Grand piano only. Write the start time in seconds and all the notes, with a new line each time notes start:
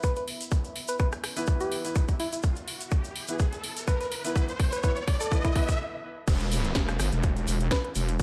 1.37 E3 B3 E4 B4
1.85 E3 B3 E4 B4
3.29 E3 B3 E4 B4
4.25 E3 B3 E4 B4
4.36 E3 B3 E4 B4
4.84 E3 B3 E4 B4
5.32 E3 B3 E4 B4
5.56 E3 B3 E4 B4